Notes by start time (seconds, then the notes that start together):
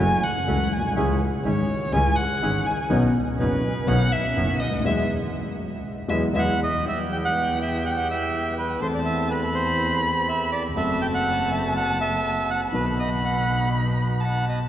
0.00 F#1 F#2 E3 F#3 A3 C#4 E4 F#4 G#5
0.24 F#5
0.47 C#2 C#3 E3 A3 C#4 E4 F#4
0.72 B1 G#5
0.78 A#1
0.85 B1
0.91 C2
0.96 C#2 C#3 E3 G#3 C#4 E4 G#4
1.44 G#1 G#2 E3 G#3 C#4 E4 G#4 C#5
1.92 C#2 C#3 E3 G#3 C#4 E4 G#4 G#5
2.16 F#5
2.41 G#1 G#2 E3 G#3 C#4 E4 G#4
2.66 G#5
2.89 B1 B2 D#3 B3 C#4 D#4 F#4
3.39 F#1 F#2 D#3 B3 C#4 D#4 F#4 B4
3.86 B1 B2 D#3 B3 C#4 D#4 F#4 F#5
4.12 E5
4.36 F#1 F#2 D#3 B3 C#4 D#4 F#4
4.60 D2 D#5
4.67 C#2
4.73 D2
4.79 D#2
4.84 E2 E3 F#3 G#3 B3 E4 E5
6.08 E2 E3 F#3 G#3 B3 E4 E5
6.33 E2 E3 F#3 G#3 B3 E4 E5
6.38 F#5
6.63 D#5
6.84 E2 E3 G3 B3 E4 G4 G5
6.88 E5
7.12 G5
7.25 F#5
7.62 E5
7.85 F#5
7.91 G5
7.97 F#5
8.11 E5
8.58 B4
8.79 E2 E3 A3 C4 E4 A4 C5 A5
8.94 D5
9.05 E5
9.31 B4 B5
9.54 C5
10.28 E5
10.52 D5
10.74 F#1 F#2 F#3 A3 C4 F#4 A4 E5 A5
11.02 G5
11.14 F#5
11.52 E5
11.77 F#5
12.01 E5
12.50 F#5
12.71 B1 B2 D#3 F#3 B3 D#4 F#4 B4 B5
12.75 F#4
12.99 D#5
13.25 F#5
14.20 F#5 A5
14.49 D#5